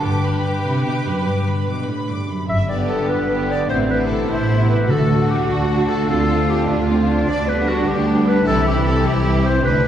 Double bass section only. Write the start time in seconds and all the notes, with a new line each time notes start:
0.04 G1
2.49 G1
3.10 G1
3.70 A1
4.30 A1
4.90 D2
5.50 D2
6.10 D2
6.70 D2
7.28 D2
7.87 D2
8.47 C2
9.05 C2
9.64 D2